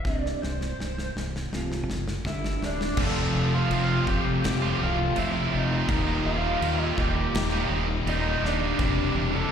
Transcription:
0.05 fingered electric bass C1, clean electric guitar C2 G2 C3, lead electric guitar D5, kick, snare
0.26 snare
0.42 fingered electric bass C1, clean electric guitar C2 G2, lead electric guitar C5, snare
0.61 snare
0.79 fingered electric bass C1, clean electric guitar C2 G2, snare
0.98 snare
1.16 fingered electric bass C1, clean electric guitar C2 G2, snare
1.36 snare
1.53 fingered electric bass C1, clean electric guitar F2 C3 F3, snare
1.72 snare
1.87 fingered electric bass F#1, clean electric guitar F2 C3, snare
2.08 snare
2.25 fingered electric bass G1, clean electric guitar G2 D3 G3, lead electric guitar E4 E5, kick, snare
2.44 snare
2.62 fingered electric bass D1, clean electric guitar G2 D3, lead electric guitar D4 D5, snare
2.81 snare
2.97 fingered electric bass F1, distorted electric guitar F2 C3 F3 A3 C4 F4, kick, crash
3.02 lead electric guitar A4 A5
3.34 fingered electric bass F1, distorted electric guitar F3 A3 C4 F4
3.52 distorted electric guitar F3 A3 C4 F4, lead electric guitar F4 F5
3.70 fingered electric bass F1, distorted electric guitar F2 C3 F3 A3 C4 F4, crash
4.07 fingered electric bass F1, distorted electric guitar F3 A3 C4 F4, lead electric guitar G4 G5, kick
4.25 distorted electric guitar F3 A3 C4 F4, muted distorted electric guitar stroke
4.43 fingered electric bass F1, distorted electric guitar F2 C3 F3 A3 C4 F4, snare, crash
4.61 distorted electric guitar F3 A3 C4 F4
4.79 fingered electric bass C1, distorted electric guitar F3 A3 C4 F4
4.83 lead electric guitar F4 F5
4.99 muted distorted electric guitar stroke
5.16 fingered electric bass F1, distorted electric guitar F2 C3 F3 A3 C4 F4, lead electric guitar E4 E5, crash
5.35 distorted electric guitar F3 A3 C4 F4
5.53 fingered electric bass F1, distorted electric guitar F3 A3 C4 F4, lead electric guitar D#4 D#5
5.72 distorted electric guitar F3 A3 C4 F4
5.89 fingered electric bass D#1, distorted electric guitar D#2 A#2 D#3 G3 A#3 D#4, kick, crash
6.25 fingered electric bass D#1, distorted electric guitar D#3 G3 A#3, lead electric guitar F4 F5
6.29 distorted electric guitar D#4
6.44 distorted electric guitar D#3 G3 A#3 D#4
6.61 fingered electric bass D#2, distorted electric guitar D#2 A#2 D#3 G3 A#3 D#4, crash
6.81 lead electric guitar D#5
6.97 fingered electric bass D#1, distorted electric guitar D#3 G3 A#3 D#4, lead electric guitar G4 G5, kick
7.16 distorted electric guitar D#3 G3 A#3 D#4, muted distorted electric guitar stroke
7.33 fingered electric bass D#1, distorted electric guitar D#2 A#2 D#3 G3 A#3 D#4, snare, crash
7.52 distorted electric guitar D#3 G3 A#3 D#4
7.69 fingered electric bass D#1, distorted electric guitar D#3 G3 A#3 D#4
7.88 muted distorted electric guitar stroke
8.05 fingered electric bass D#1, distorted electric guitar D#2 A#2 D#3 G3 A#3 D#4, lead electric guitar D#4 D#5, crash
8.23 distorted electric guitar D#3 G3 A#3 D#4
8.42 fingered electric bass D#1, distorted electric guitar D#3 G3 A#3 D#4, lead electric guitar D4 D5, snare
8.61 distorted electric guitar D#3 G3 A#3 D#4
8.78 fingered electric bass E1, distorted electric guitar C2 G2 C3 G3 D4, kick, crash
9.14 fingered electric bass E1, distorted electric guitar G2 C3 G3 D4
9.33 distorted electric guitar C3 G3 D4, lead electric guitar A4 A5

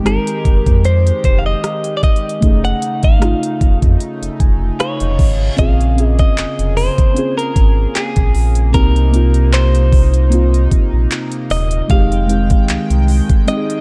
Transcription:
Already playing: sub bass G1, analog synth pad D#3 G#3 G4, synth keys G#3 C4 D#4 G4
0.04 synth keys G#3 C4 D#4, clean electric guitar A#4, cross-stick, closed hi-hat
0.08 synth keys G4
0.27 closed hi-hat
0.45 sub bass F1, kick, closed hi-hat
0.66 sub bass F2, kick, closed hi-hat
0.85 clean electric guitar C5, closed hi-hat
1.07 closed hi-hat
1.24 sub bass F1, clean electric guitar C5, kick, closed hi-hat
1.39 clean electric guitar F5
1.46 clean electric guitar D#5
1.64 cross-stick, closed hi-hat
1.84 closed hi-hat
1.97 clean electric guitar D5
2.03 clean electric guitar D#5, kick, closed hi-hat
2.16 closed hi-hat
2.29 closed hi-hat
2.41 sub bass F1, analog synth pad C#3 A3 D#4, synth keys A3 C#4 D#4, kick, closed hi-hat
2.45 synth keys G#4
2.65 clean electric guitar F#5, closed hi-hat
2.82 closed hi-hat
3.03 sub bass G#1, clean electric guitar F5, kick, closed hi-hat
3.19 synth keys A3 C#4 D#4, cross-stick, closed hi-hat
3.24 synth keys F4
3.43 closed hi-hat
3.61 sub bass F1, kick, closed hi-hat
3.82 sub bass F2, kick, closed hi-hat
4.00 closed hi-hat, reverse cymbal
4.22 sub bass F1, closed hi-hat
4.40 sub bass F1, synth keys G#5, kick, closed hi-hat
4.79 clean electric guitar C#5, synth keys F5, cross-stick, closed hi-hat
5.00 sub bass F1, synth keys D#5, closed hi-hat
5.19 sub bass G#1, kick, open hi-hat
5.56 sub bass A#1, analog synth pad C#3 A#3 G#4, synth keys C4 C#4 F4, clean electric guitar F5, kick, closed hi-hat
5.61 synth keys G#4
5.81 closed hi-hat
5.96 synth keys C4 C#4 F4, closed hi-hat
6.00 synth keys G#4
6.07 clean electric guitar D#5
6.19 clean electric guitar D#5, kick, closed hi-hat
6.37 sub bass F1, clap, closed hi-hat
6.59 sub bass F1, closed hi-hat
6.77 clean electric guitar C5, open hi-hat
6.98 kick, closed hi-hat
7.14 synth keys C4 C#4 F4, closed hi-hat
7.19 synth keys G#4
7.38 clean electric guitar A#4, closed hi-hat
7.56 sub bass G#1, kick, closed hi-hat
7.95 clean electric guitar G#4, clap, closed hi-hat
8.16 sub bass A#1, kick, closed hi-hat
8.35 sub bass A#1, open hi-hat
8.55 closed hi-hat
8.72 sub bass C2, analog synth pad C3 D#4, synth keys A#3 C4 D#4, clean electric guitar A#4, kick, closed hi-hat
8.76 synth keys G4
8.96 closed hi-hat
9.11 synth keys A#3 C4 D#4, closed hi-hat
9.16 synth keys F4
9.34 closed hi-hat
9.53 clean electric guitar C5, clap, closed hi-hat
9.75 closed hi-hat
9.93 kick, open hi-hat
10.14 closed hi-hat
10.30 synth keys A#3 C4 D#4 F4, closed hi-hat
10.54 closed hi-hat
10.71 sub bass A#1, kick, closed hi-hat
10.93 sub bass A#1
11.11 clap, closed hi-hat
11.32 closed hi-hat
11.50 sub bass D#1, clean electric guitar D#5, open hi-hat
11.71 closed hi-hat
11.88 sub bass F1, analog synth pad D#3 G#3 G5, synth keys G#3 C4 D#4, clean electric guitar F5, kick, closed hi-hat
11.92 synth keys G4
12.12 closed hi-hat
12.27 synth keys G#3 C4 D#4, closed hi-hat
12.31 synth keys G4
12.50 kick, closed hi-hat
12.69 sub bass C2, clap, closed hi-hat
12.90 sub bass C2, closed hi-hat
13.08 open hi-hat
13.29 kick, closed hi-hat
13.46 synth keys G#3 C4 D#4, clean electric guitar D#5, closed hi-hat
13.50 synth keys G4
13.57 synth keys G#4
13.70 closed hi-hat

